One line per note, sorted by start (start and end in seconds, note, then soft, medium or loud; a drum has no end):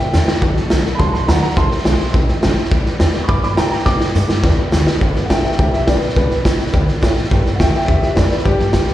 0.00 0.13 E3 soft
0.00 0.13 G3 soft
0.00 0.14 B3 medium
0.00 0.13 G4 medium
0.00 0.67 E5 loud
0.00 0.41 G5 loud
0.00 0.08 G5 medium
0.13 0.28 E2 loud
0.13 0.28 G2 medium
0.13 0.28 D3 medium
0.13 0.28 E3 medium
0.13 0.28 G3 medium
0.13 0.27 B3 medium
0.13 0.26 G4 medium
0.13 0.22 B4 loud
0.13 0.22 D5 loud
0.13 0.22 G5 loud
0.13 snare medium
0.13 hi-hat pedal medium
0.27 0.42 E3 soft
0.27 0.42 G3 soft
0.27 0.42 B3 medium
0.27 0.42 G4 medium
0.27 0.36 B4 medium
0.27 0.37 D5 medium
0.27 0.37 G5 medium
0.27 muted upright bass stroke medium
0.27 snare loud
0.41 0.56 D2 medium
0.41 0.56 D3 medium
0.41 0.57 F#3 medium
0.41 0.57 A3 medium
0.41 0.57 B3 medium
0.41 0.54 F#4 medium
0.41 0.50 A4 loud
0.41 0.50 D5 loud
0.41 0.51 F#5 loud
0.41 kick loud
0.41 snare soft
0.55 0.70 A3 medium
0.55 0.70 B3 medium
0.55 0.70 F#4 medium
0.55 0.65 A4 loud
0.55 0.65 D5 medium
0.55 0.65 F#5 medium
0.55 muted upright bass stroke medium
0.55 snare soft
0.70 0.85 C2 medium
0.70 0.85 D3 loud
0.70 0.85 F#3 loud
0.70 0.85 A3 loud
0.70 0.85 B3 loud
0.70 0.83 F#4 loud
0.70 0.79 A4 medium
0.70 0.79 D5 medium
0.70 0.80 F#5 loud
0.70 snare loud
0.70 hi-hat pedal medium
0.84 0.99 A3 soft
0.84 1.00 B3 soft
0.84 0.99 F#4 medium
0.84 0.94 A4 medium
0.84 0.94 D5 medium
0.84 0.94 F#5 loud
0.84 muted upright bass stroke medium
0.84 snare soft
0.95 1.13 F#3 medium
0.95 1.11 A5 medium
0.95 0.97 B5 medium
0.99 1.14 B1 medium
0.99 1.14 A3 medium
0.99 1.13 B3 medium
0.99 1.11 F#4 medium
0.99 1.08 A4 loud
0.99 1.08 D5 loud
0.99 1.08 F#5 loud
0.99 1.12 C6 loud
0.99 kick loud
0.99 snare soft
1.12 1.28 A3 soft
1.12 1.28 B3 medium
1.12 1.28 F#4 medium
1.12 1.22 A4 medium
1.12 1.22 D5 medium
1.12 1.23 F#5 loud
1.12 1.26 A5 medium
1.12 1.28 C6 medium
1.12 muted upright bass stroke medium
1.12 snare soft
1.27 1.42 D2 loud
1.27 1.42 D3 medium
1.27 1.43 F#3 medium
1.27 1.43 A3 medium
1.27 1.43 B3 medium
1.27 1.41 F#4 medium
1.27 1.36 A4 loud
1.27 1.37 D5 medium
1.27 1.41 F#5 medium
1.27 1.37 F#5 loud
1.27 1.41 A#5 medium
1.27 snare loud
1.27 hi-hat pedal medium
1.42 1.57 A3 soft
1.42 1.58 B3 medium
1.42 1.57 F#4 medium
1.42 1.51 A4 medium
1.42 1.51 D5 medium
1.42 1.56 F#5 medium
1.42 1.51 F#5 medium
1.42 1.57 A#5 loud
1.42 muted upright bass stroke medium
1.42 snare soft
1.50 snare soft
1.56 1.71 C2 medium
1.56 1.71 C3 medium
1.56 1.72 E3 medium
1.56 1.72 A3 medium
1.56 1.72 E4 medium
1.56 1.70 G4 medium
1.56 1.65 C5 loud
1.56 1.66 E5 medium
1.56 1.66 G5 loud
1.56 2.10 A5 loud
1.56 2.13 C6 loud
1.56 kick loud
1.56 snare soft
1.71 1.85 A3 medium
1.71 1.86 E4 medium
1.71 1.86 G4 medium
1.71 1.80 C5 medium
1.71 1.80 E5 medium
1.71 1.80 G5 medium
1.71 muted upright bass stroke medium
1.71 snare soft
1.78 snare soft
1.85 1.99 B1 loud
1.85 2.00 C3 medium
1.85 2.00 E3 medium
1.85 2.00 A3 medium
1.85 2.00 E4 loud
1.85 1.98 G4 loud
1.85 1.94 C5 medium
1.85 1.94 E5 medium
1.85 1.94 G5 medium
1.85 snare loud
1.85 hi-hat pedal medium
1.99 2.14 A3 medium
1.99 2.14 E4 medium
1.99 2.14 G4 medium
1.99 2.08 C5 medium
1.99 2.09 E5 medium
1.99 2.09 G5 loud
1.99 muted upright bass stroke medium
1.99 snare soft
2.07 snare soft
2.13 2.28 A1 medium
2.13 2.28 E3 medium
2.13 2.29 A3 medium
2.13 2.28 E4 medium
2.13 2.26 G4 medium
2.13 2.22 C5 loud
2.13 2.23 E5 loud
2.13 2.23 G5 loud
2.13 kick loud
2.13 snare soft
2.28 2.42 A3 medium
2.28 2.43 E4 medium
2.28 2.42 G4 medium
2.28 2.37 C5 medium
2.28 2.37 E5 medium
2.28 2.37 G5 loud
2.28 muted upright bass stroke medium
2.28 snare soft
2.42 2.57 G1 loud
2.42 2.57 C3 medium
2.42 2.57 E3 loud
2.42 2.58 A3 loud
2.42 2.57 E4 loud
2.42 2.55 G4 loud
2.42 2.51 C5 loud
2.42 2.51 E5 loud
2.42 2.52 G5 loud
2.42 snare loud
2.42 hi-hat pedal loud
2.56 2.72 A3 medium
2.56 2.72 E4 medium
2.56 2.71 G4 medium
2.56 2.66 C5 medium
2.56 2.66 E5 medium
2.56 2.66 G5 loud
2.56 muted upright bass stroke medium
2.56 snare soft
2.65 snare soft
2.71 2.85 D2 medium
2.71 2.86 G2 medium
2.71 2.86 D3 medium
2.71 2.86 E3 medium
2.71 2.86 G3 medium
2.71 2.85 B3 medium
2.71 2.84 G4 medium
2.71 2.80 B4 loud
2.71 2.80 D5 loud
2.71 2.81 G5 loud
2.71 kick loud
2.71 snare soft
2.85 3.00 E3 medium
2.85 3.00 G3 medium
2.85 3.00 B3 medium
2.85 3.00 G4 medium
2.85 2.95 B4 loud
2.85 2.95 D5 medium
2.85 2.95 G5 loud
2.85 muted upright bass stroke soft
2.85 snare soft
3.00 3.14 E2 medium
3.00 3.14 G2 medium
3.00 3.15 D3 loud
3.00 3.15 E3 loud
3.00 3.15 G3 medium
3.00 3.14 B3 loud
3.00 3.13 G4 loud
3.00 3.09 B4 medium
3.00 3.09 D5 medium
3.00 3.10 G5 loud
3.00 snare loud
3.00 hi-hat pedal medium
3.14 3.27 E3 soft
3.14 3.28 G3 medium
3.14 3.29 B3 medium
3.14 3.29 G4 medium
3.14 3.23 B4 medium
3.14 3.24 D5 medium
3.14 3.24 G5 medium
3.14 muted upright bass stroke medium
3.14 snare soft
3.24 3.43 E3 medium
3.24 3.42 B5 loud
3.24 3.27 C#6 medium
3.28 3.43 G2 loud
3.28 3.44 G3 medium
3.28 3.43 B3 medium
3.28 3.41 G4 medium
3.28 3.38 B4 loud
3.28 3.38 D5 medium
3.28 3.38 G5 loud
3.28 3.42 D6 loud
3.28 kick loud
3.28 snare soft
3.42 3.57 E3 soft
3.42 3.57 G3 medium
3.42 3.58 B3 medium
3.42 3.57 G4 medium
3.42 3.52 B4 medium
3.42 3.52 D5 medium
3.42 3.52 G5 medium
3.42 3.57 B5 medium
3.42 3.58 D6 loud
3.42 muted upright bass stroke medium
3.42 snare soft
3.57 3.72 G2 medium
3.57 3.72 A2 loud
3.57 3.72 D3 medium
3.57 3.72 E3 medium
3.57 3.72 G3 medium
3.57 3.72 B3 medium
3.57 3.71 G4 loud
3.57 3.66 B4 loud
3.57 3.67 D5 medium
3.57 3.70 G5 medium
3.57 3.67 G5 loud
3.57 3.70 A#5 loud
3.57 snare loud
3.57 hi-hat pedal medium
3.71 3.85 E3 soft
3.71 3.86 G3 soft
3.71 3.86 B3 medium
3.71 3.86 G4 medium
3.71 3.81 B4 medium
3.71 3.81 D5 medium
3.71 3.85 G5 medium
3.71 3.81 G5 medium
3.71 3.86 A#5 medium
3.71 muted upright bass stroke medium
3.71 snare soft
3.79 snare soft
3.85 4.00 G2 medium
3.85 4.00 B2 medium
3.85 4.00 D3 medium
3.85 4.01 E3 medium
3.85 4.01 G3 medium
3.85 4.00 B3 medium
3.85 3.98 G4 medium
3.85 3.95 B4 loud
3.85 3.96 D5 medium
3.85 3.96 G5 loud
3.85 4.42 D6 loud
3.85 kick loud
3.85 snare medium
4.00 4.14 E3 soft
4.00 4.14 G3 medium
4.00 4.15 B3 medium
4.00 4.15 G4 medium
4.00 4.10 B4 medium
4.00 4.10 D5 medium
4.00 4.10 G5 medium
4.00 muted upright bass stroke medium
4.00 snare medium
4.14 4.29 G2 medium
4.14 4.29 D3 medium
4.14 4.29 E3 loud
4.14 4.30 G3 medium
4.14 4.29 B3 medium
4.14 4.27 G4 medium
4.14 4.24 B4 medium
4.14 4.24 D5 medium
4.14 4.24 G5 medium
4.14 hi-hat pedal loud
4.28 4.41 E3 medium
4.28 4.42 G3 medium
4.28 4.44 B3 medium
4.28 4.43 G4 medium
4.28 4.38 B4 medium
4.28 4.38 D5 medium
4.28 4.39 G5 loud
4.28 muted upright bass stroke medium
4.28 snare medium
4.42 4.58 E2 medium
4.42 4.57 E3 medium
4.42 4.58 G3 medium
4.42 4.58 B3 medium
4.42 4.56 G4 medium
4.42 4.53 B4 loud
4.42 4.53 D5 loud
4.42 4.53 G5 loud
4.42 kick loud
4.42 snare medium
4.57 4.72 E3 medium
4.57 4.72 G3 medium
4.57 4.72 B3 medium
4.57 4.72 G4 medium
4.57 4.67 B4 loud
4.57 4.67 D5 medium
4.57 4.67 G5 loud
4.57 muted upright bass stroke medium
4.71 4.87 D2 loud
4.71 4.86 G2 medium
4.71 4.87 D3 medium
4.71 4.87 E3 loud
4.71 4.87 G3 loud
4.71 4.86 B3 loud
4.71 4.85 G4 loud
4.71 4.81 B4 loud
4.71 4.81 D5 loud
4.71 4.82 G5 loud
4.71 snare loud
4.71 hi-hat pedal loud
4.86 5.00 E3 soft
4.86 5.00 G3 medium
4.86 5.01 B3 medium
4.86 5.01 G4 medium
4.86 4.96 B4 medium
4.86 4.96 D5 medium
4.86 4.96 G5 loud
4.86 muted upright bass stroke medium
4.86 snare loud
5.00 5.15 G1 medium
5.00 5.15 G2 medium
5.00 5.15 D3 medium
5.00 5.15 E3 medium
5.00 5.15 G3 medium
5.00 5.14 B3 medium
5.00 5.13 G4 loud
5.00 5.10 B4 loud
5.00 5.10 D5 loud
5.00 5.10 G5 loud
5.00 kick loud
5.00 snare soft
5.14 5.29 E3 medium
5.14 5.29 G3 medium
5.14 5.30 B3 medium
5.14 5.29 G4 medium
5.14 5.24 B4 medium
5.14 5.25 D5 medium
5.14 5.25 G5 loud
5.14 muted upright bass stroke medium
5.14 snare soft
5.25 5.44 G2 medium
5.25 5.43 E5 medium
5.25 5.28 F#5 medium
5.30 5.44 A#1 medium
5.30 5.44 D3 medium
5.30 5.44 E3 loud
5.30 5.45 G3 medium
5.30 5.43 B3 medium
5.30 5.42 G4 medium
5.30 5.39 B4 medium
5.30 5.39 D5 medium
5.30 5.43 G5 medium
5.30 5.39 G5 medium
5.30 kick medium
5.30 snare loud
5.30 hi-hat pedal medium
5.43 5.56 E3 soft
5.43 5.57 G3 medium
5.43 5.59 B3 soft
5.43 5.58 G4 soft
5.43 5.53 B4 medium
5.43 5.53 D5 medium
5.43 5.58 E5 medium
5.43 5.59 G5 medium
5.43 5.53 G5 medium
5.43 muted upright bass stroke medium
5.43 snare soft
5.52 snare soft
5.57 5.73 B1 medium
5.57 5.72 E3 medium
5.57 5.73 G3 medium
5.57 5.72 B3 medium
5.57 5.72 G4 medium
5.57 5.71 G4 medium
5.57 5.67 B4 loud
5.57 5.68 D5 medium
5.57 5.72 E5 medium
5.57 5.68 G5 loud
5.57 kick loud
5.57 snare soft
5.72 5.87 E3 soft
5.72 5.87 G3 soft
5.72 5.88 B3 medium
5.72 5.87 G4 medium
5.72 5.86 G4 medium
5.72 5.82 B4 medium
5.72 5.82 D5 medium
5.72 5.87 E5 medium
5.72 5.83 G5 medium
5.72 muted upright bass stroke medium
5.72 snare soft
5.87 6.02 A1 loud
5.87 6.02 G2 medium
5.87 6.02 D3 medium
5.87 6.02 E3 medium
5.87 6.02 G3 medium
5.87 6.01 B3 medium
5.87 6.00 G4 medium
5.87 5.96 B4 medium
5.87 6.00 B4 medium
5.87 5.96 D5 medium
5.87 6.00 D5 loud
5.87 5.96 G5 loud
5.87 kick loud
5.87 snare loud
5.87 hi-hat pedal medium
6.01 6.16 E3 soft
6.01 6.16 G3 medium
6.01 6.17 B3 medium
6.01 6.16 G4 medium
6.01 6.10 B4 medium
6.01 6.15 B4 medium
6.01 6.16 D5 medium
6.01 6.10 D5 medium
6.01 6.11 G5 medium
6.01 muted upright bass stroke medium
6.01 snare soft
6.09 snare soft
6.15 6.30 B1 medium
6.15 6.30 G2 medium
6.15 6.31 D3 medium
6.15 6.31 E3 medium
6.15 6.31 G3 medium
6.15 6.30 B3 medium
6.15 6.29 G4 medium
6.15 6.24 B4 medium
6.15 6.72 B4 loud
6.15 6.25 D5 loud
6.15 6.25 G5 loud
6.15 kick loud
6.15 snare soft
6.29 6.44 E3 medium
6.29 6.45 G3 medium
6.29 6.45 B3 medium
6.29 6.45 G4 medium
6.29 6.39 B4 medium
6.29 6.39 D5 medium
6.29 6.39 G5 medium
6.29 muted upright bass stroke medium
6.29 snare soft
6.44 6.58 C2 loud
6.44 6.59 G2 medium
6.44 6.59 D3 medium
6.44 6.60 E3 medium
6.44 6.60 G3 medium
6.44 6.59 B3 medium
6.44 6.58 G4 medium
6.44 6.53 B4 medium
6.44 6.54 D5 medium
6.44 6.54 G5 medium
6.44 kick medium
6.44 snare loud
6.44 hi-hat pedal medium
6.58 6.71 E3 soft
6.58 6.73 G3 medium
6.58 6.74 B3 medium
6.58 6.73 G4 medium
6.58 6.67 B4 medium
6.58 6.68 D5 medium
6.58 6.68 G5 medium
6.58 muted upright bass stroke soft
6.58 snare soft
6.66 snare soft
6.73 6.88 D2 medium
6.73 6.87 E3 medium
6.73 6.88 G3 medium
6.73 6.88 B3 medium
6.73 6.86 G4 medium
6.73 6.82 B4 loud
6.73 6.82 D5 loud
6.73 6.82 G5 loud
6.73 kick loud
6.73 snare soft
6.87 7.01 E3 medium
6.87 7.02 G3 medium
6.87 7.02 B3 medium
6.87 7.02 G4 medium
6.87 6.96 B4 medium
6.87 6.96 D5 medium
6.87 6.97 G5 loud
6.87 muted upright bass stroke medium
6.87 snare soft
7.01 7.16 G2 medium
7.01 7.16 A2 loud
7.01 7.16 D3 medium
7.01 7.16 E3 loud
7.01 7.17 G3 medium
7.01 7.16 B3 medium
7.01 7.14 G4 loud
7.01 7.10 B4 loud
7.01 7.11 D5 loud
7.01 7.11 G5 loud
7.01 kick loud
7.01 snare loud
7.01 hi-hat pedal medium
7.16 7.30 E3 medium
7.16 7.30 G3 medium
7.16 7.30 B3 medium
7.16 7.30 G4 medium
7.16 7.25 B4 medium
7.16 7.25 D5 medium
7.16 7.25 G5 medium
7.16 muted upright bass stroke medium
7.16 snare soft
7.24 snare soft
7.30 7.45 G2 medium
7.30 7.45 D3 medium
7.30 7.45 E3 medium
7.30 7.45 G3 medium
7.30 7.44 B3 medium
7.30 7.43 G4 medium
7.30 7.40 B4 loud
7.30 7.40 D5 loud
7.30 7.40 G5 loud
7.30 kick loud
7.30 snare soft
7.44 7.59 E3 medium
7.44 7.59 G3 medium
7.44 7.59 B3 medium
7.44 7.59 G4 medium
7.44 7.54 B4 medium
7.44 7.54 D5 medium
7.44 7.55 G5 medium
7.44 muted upright bass stroke medium
7.44 snare soft
7.56 7.74 G2 medium
7.56 7.74 D3 medium
7.56 7.58 F#5 medium
7.60 7.74 D2 medium
7.60 7.74 E3 medium
7.60 7.73 G3 loud
7.60 7.73 B3 medium
7.60 7.72 G4 loud
7.60 7.68 B4 medium
7.60 7.68 D5 medium
7.60 7.72 E5 medium
7.60 7.73 G5 medium
7.60 7.69 G5 medium
7.60 kick medium
7.60 snare loud
7.60 hi-hat pedal medium
7.73 7.86 E3 soft
7.73 7.88 G3 soft
7.73 7.88 B3 soft
7.73 7.88 G4 medium
7.73 7.83 B4 medium
7.73 7.83 D5 medium
7.73 7.87 E5 medium
7.73 7.83 G5 medium
7.73 7.88 G5 medium
7.73 muted upright bass stroke medium
7.73 snare soft
7.81 snare soft
7.87 8.02 E2 medium
7.87 8.02 E3 medium
7.87 8.03 G3 medium
7.87 8.02 B3 medium
7.87 8.01 G4 medium
7.87 8.00 G4 medium
7.87 7.97 B4 loud
7.87 7.97 D5 medium
7.87 8.01 E5 medium
7.87 7.97 G5 loud
7.87 kick loud
7.87 snare soft
8.01 8.16 E3 soft
8.01 8.16 G3 medium
8.01 8.17 B3 medium
8.01 8.16 G4 medium
8.01 8.11 B4 medium
8.01 8.11 D5 medium
8.01 8.17 E5 medium
8.01 8.11 G5 medium
8.01 muted upright bass stroke medium
8.01 snare soft
8.16 8.31 F2 loud
8.16 8.31 G2 medium
8.16 8.31 D3 medium
8.16 8.31 E3 medium
8.16 8.31 G3 medium
8.16 8.30 B3 medium
8.16 8.29 G4 loud
8.16 8.25 B4 loud
8.16 8.28 B4 medium
8.16 8.25 D5 medium
8.16 8.29 D5 medium
8.16 8.25 G5 loud
8.16 kick medium
8.16 snare loud
8.16 hi-hat pedal medium
8.30 8.44 E3 soft
8.30 8.45 G3 soft
8.30 8.45 B3 medium
8.30 8.45 G4 medium
8.30 8.44 B4 medium
8.30 8.39 B4 medium
8.30 8.45 D5 medium
8.30 8.40 D5 medium
8.30 8.40 G5 medium
8.30 muted upright bass stroke medium
8.30 snare soft
8.39 snare soft
8.44 8.59 G2 medium
8.44 8.60 G2 medium
8.44 8.60 D3 medium
8.44 8.60 E3 medium
8.44 8.59 G3 medium
8.44 8.58 B3 medium
8.44 8.94 G4 loud
8.44 8.57 G4 medium
8.44 8.54 B4 loud
8.44 8.54 D5 medium
8.44 8.54 G5 loud
8.44 kick loud
8.44 snare soft
8.58 8.73 E3 medium
8.58 8.74 G3 medium
8.58 8.74 B3 medium
8.58 8.74 G4 medium
8.58 8.68 B4 medium
8.58 8.68 D5 medium
8.58 8.69 A5 medium
8.58 muted upright bass stroke medium
8.58 snare soft
8.73 8.88 E2 medium
8.73 8.88 G2 medium
8.73 8.89 D3 medium
8.73 8.89 E3 medium
8.73 8.88 G3 medium
8.73 8.87 B3 medium
8.73 8.86 G4 loud
8.73 8.82 B4 medium
8.73 8.83 D5 medium
8.73 8.83 G5 medium
8.73 kick medium
8.73 snare loud
8.73 hi-hat pedal medium
8.87 8.94 E3 soft
8.87 8.94 G3 soft
8.87 8.94 B3 medium
8.87 8.94 G4 medium
8.87 8.94 B4 medium
8.87 8.94 D5 medium
8.87 8.94 G5 loud
8.87 muted upright bass stroke soft
8.87 snare soft